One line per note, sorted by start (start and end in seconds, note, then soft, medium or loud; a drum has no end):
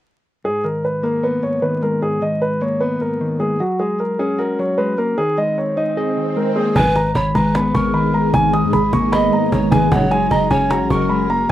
0.44 1.41 G#2 medium
0.44 0.63 G#4 medium
0.64 1.61 D#3 medium
0.64 0.83 A#4 medium
0.85 1.03 B4 medium
1.03 2.02 A#3 medium
1.03 1.22 A#4 medium
1.23 2.22 B3 medium
1.23 1.42 B4 medium
1.43 2.01 G#2 medium
1.43 1.61 C#5 medium
1.62 2.21 D#3 medium
1.62 1.81 B4 medium
1.82 2.81 G#3 medium
1.82 2.01 A#4 medium
2.02 2.99 G#2 medium
2.02 2.21 G#4 medium
2.22 3.20 D#3 medium
2.22 2.40 D#5 medium
2.42 2.60 B4 medium
2.61 3.60 A#3 medium
2.61 2.80 C#5 medium
2.80 3.60 B3 medium
2.80 2.99 B4 medium
3.01 3.60 G#2 medium
3.01 3.38 A#4 medium
3.21 3.60 D#3 medium
3.40 3.60 G#3 medium
3.40 3.58 G#4 medium
3.60 4.58 F#3 medium
3.60 3.79 F#4 medium
3.60 swell medium
3.79 4.77 G#3 medium
3.79 3.98 G#4 medium
4.00 4.18 A#4 medium
4.19 5.18 C#4 loud
4.19 4.38 G#4 medium
4.39 5.18 F#4 medium
4.39 4.57 A#4 medium
4.59 5.18 F#3 medium
4.59 4.77 C#5 medium
4.78 4.98 G#3 loud
4.78 4.96 B4 medium
4.98 5.18 A#3 medium
4.98 5.17 A#4 medium
5.18 6.15 D#3 medium
5.18 5.36 G#4 medium
5.38 6.35 G#3 medium
5.38 5.56 D#5 medium
5.58 5.76 C#5 medium
5.77 6.76 D#4 loud
5.77 5.95 D#5 medium
5.97 6.34 G#4 medium
5.97 6.76 D#5 medium
6.17 6.76 D#3 medium
6.36 6.76 G#3 medium
6.36 6.55 A#4 medium
6.56 6.76 A#3 medium
6.56 6.74 G#4 medium
6.76 7.14 G#1 loud
6.76 6.93 B1 loud
6.76 7.73 G#2 loud
6.76 6.93 A#2 medium
6.76 6.93 D#3 loud
6.76 9.88 G#3 medium
6.76 9.89 D#4 medium
6.76 9.88 G#4 medium
6.76 7.13 B4 loud
6.76 6.95 G#5 medium
6.76 11.52 A#5 medium
6.76 cajon bass loud
6.96 7.93 D#3 medium
6.96 7.14 A#5 medium
6.96 cajon slap medium
7.15 7.34 G#1 loud
7.15 7.34 C#5 medium
7.15 7.34 B5 medium
7.15 cajon bass loud
7.22 cajon slap soft
7.29 cajon slap soft
7.35 7.73 G#1 loud
7.35 8.13 G#3 loud
7.35 7.72 B4 medium
7.35 7.53 A#5 medium
7.35 cajon bass loud
7.55 8.53 B3 medium
7.55 7.73 B5 medium
7.55 cajon slap loud
7.74 8.31 G#1 loud
7.74 8.33 G#2 medium
7.74 8.30 A#4 medium
7.74 7.93 C#6 medium
7.74 cajon bass loud
7.94 8.52 D#3 loud
7.94 8.12 B5 medium
7.94 cajon slap soft
8.14 9.13 G#3 medium
8.14 8.32 A#5 medium
8.34 8.65 G#1 loud
8.34 9.31 G#2 medium
8.34 8.52 G#5 medium
8.34 cajon bass loud
8.53 9.51 D#3 medium
8.53 8.72 D#6 medium
8.53 cajon slap medium
8.64 8.73 G#2 loud
8.73 8.92 G#1 loud
8.73 8.92 B5 medium
8.73 cajon bass loud
8.93 9.31 G#1 loud
8.93 9.91 A#3 loud
8.93 9.11 C#6 medium
8.93 cajon bass loud
9.12 9.92 B3 medium
9.12 9.50 D#5 medium
9.12 9.31 B5 medium
9.12 cajon slap loud
9.32 9.92 G#2 medium
9.32 9.70 A#5 medium
9.32 cajon slap soft
9.52 9.71 G#1 loud
9.52 9.92 D#3 loud
9.52 9.71 C#5 medium
9.52 cajon bass loud
9.71 9.91 G#1 loud
9.71 9.91 G#3 medium
9.71 9.91 B4 medium
9.71 9.90 G#5 medium
9.71 cajon bass loud
9.71 cajon slap loud
9.91 10.30 F#1 loud
9.91 10.08 A#1 loud
9.91 10.08 G#2 loud
9.91 10.08 C#3 loud
9.91 10.89 F#3 medium
9.91 11.48 F#3 medium
9.91 11.48 C#4 medium
9.91 11.52 G#4 medium
9.91 10.29 C#5 loud
9.91 10.10 F#5 medium
9.91 cajon bass loud
10.11 11.08 G#3 medium
10.11 10.30 G#5 medium
10.11 cajon slap medium
10.30 10.50 F#1 loud
10.30 10.49 D#5 loud
10.30 10.50 A#5 medium
10.30 cajon bass loud
10.38 cajon slap soft
10.44 cajon slap soft
10.51 10.83 F#1 loud
10.51 11.50 C#4 loud
10.51 10.88 C#5 medium
10.51 10.69 G#5 medium
10.51 cajon bass loud
10.70 11.49 F#4 medium
10.70 10.89 A#5 medium
10.70 cajon slap loud
10.81 10.90 A#1 loud
10.90 11.47 F#1 loud
10.90 11.49 F#3 medium
10.90 11.46 A#4 medium
10.90 11.09 C#6 medium
10.90 cajon bass loud
11.09 11.30 G#3 loud
11.09 11.28 B5 medium
11.09 cajon slap soft
11.30 11.50 A#3 medium
11.30 11.48 A#5 medium